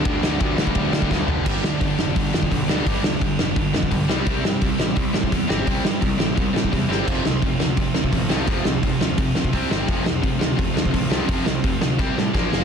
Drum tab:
CC |----------------|x---------------|----------------|----------------|
RD |x---x---x-------|----------------|----------------|----------------|
HH |----------------|----o---o---o---|o---o---o---o---|o---o---o---o---|
SD |--o---o---o-o---|--o---o---o---o-|--o---o---o---o-|--o---o---o---o-|
FT |--------------o-|----------------|----------------|----------------|
BD |o---o--oo--oo---|o---o---o--oo---|o---o---o--oo---|o---o---o--oo---|

CC |----------------|x---------------|----------------|----------------|
RD |----------------|----------------|----------------|----------------|
HH |o---o---o---o---|----o---o---o---|o---o---o---o---|o---o---o---o---|
SD |--o---o---o---o-|--o---o---o---o-|--o---o---o---o-|--o---o---o---o-|
FT |----------------|----------------|----------------|----------------|
BD |o---o---o--oo---|o---o---o--oo---|o---o---o--oo---|o---o---o--oo---|

CC |----------------|
RD |----------------|
HH |o---o-----------|
SD |--o---o-o-o-o-o-|
FT |----------------|
BD |o---o---o---o---|